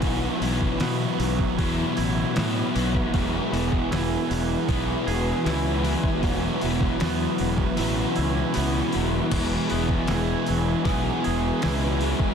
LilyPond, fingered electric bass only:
\new Staff \with { instrumentName = "Fingered electric bass" } { \clef bass \time 4/4 \key e \major \tempo 4 = 78 b,,8 b,,8 b,8 b,,8 e,8 a,,8 a,8 b,,8 | e,,8 e,,8 e,,8 e,,8 b,,8 e,,8 cis,4 | e,,8 e,,8 e,8 e,,8 a,,8 cis,8 cis,8 e,,8 | e,,8 e,,8 e,,8 e,,8 b,,8 e,,8 cis,4 | }